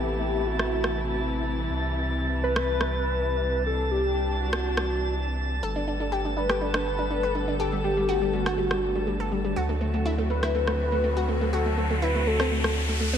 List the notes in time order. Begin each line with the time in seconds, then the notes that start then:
Already playing: A1 C3 E3 A3 B3 E4 G4 A5
0.47 F#4
0.59 cross-stick
0.84 cross-stick
1.70 C2 G3
2.43 B4
2.56 cross-stick
2.81 cross-stick
3.66 D4 A4
3.91 G4
4.40 F#4
4.53 cross-stick
4.77 cross-stick
5.63 G1 D3 G3 A3 B3 A4
5.76 D4
5.88 D4
6.00 D4
6.12 G4
6.25 D4
6.37 D4 B4
6.49 G4, cross-stick
6.61 D4
6.74 D4, cross-stick
6.99 D4
7.10 D4
7.23 B4
7.35 D4
7.48 D4
7.59 G4 A4
7.72 G3
7.84 G3 G4
7.97 G3
8.09 F#4
8.22 G3
8.33 G3 F#4
8.46 F#4, cross-stick
8.58 G3
8.71 G3, cross-stick
8.95 G3
9.07 G3
9.20 A4
9.32 G3
9.45 G3
9.56 D2 F#3 C4 F#4, riser
9.69 A3
9.81 A3
9.94 A3
10.06 E4
10.18 A3
10.30 A3 B4
10.43 E4, cross-stick
10.55 A3
10.67 A3, cross-stick
10.92 A3
11.04 A3
11.17 F#4
11.28 A3
11.41 A3
11.53 F#4 A4
11.66 A3
11.78 A3
11.90 A3
12.02 E4 B4
12.15 A3
12.27 A3 A4
12.40 C4, cross-stick
12.52 A3
12.64 A3, cross-stick
12.89 A3
13.01 A3
13.13 B3